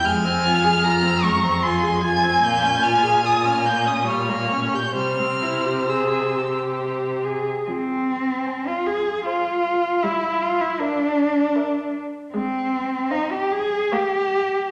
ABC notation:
X:1
M:3/4
L:1/16
Q:1/4=75
K:Fm
V:1 name="Violin"
f'6 d'2 c'2 a'2 | g'2 f'2 e' f' g' e' f'3 g' | f'4 =e'4 z4 | z4 a4 a4 |
z4 =e4 e4 | z4 f4 f4 |]
V:2 name="Violin"
a4 b4 a4- | a8 d4 | c8- c2 z2 | z4 c4 c4 |
z4 B4 B4 | z4 c4 d4 |]
V:3 name="Cello"
F,,12 | B,,12 | C,8- C,3 z | C4- C F A2 F4 |
=E2 F E =D6 z2 | C4 E G A2 G4 |]
V:4 name="Viola"
A, C F A F C A, C F A F C | B, D F A F D B, D G, B, D G | G, C =E G A2 G4 A2 | F,4 z8 |
G,4 z8 | A,4 z4 B,4 |]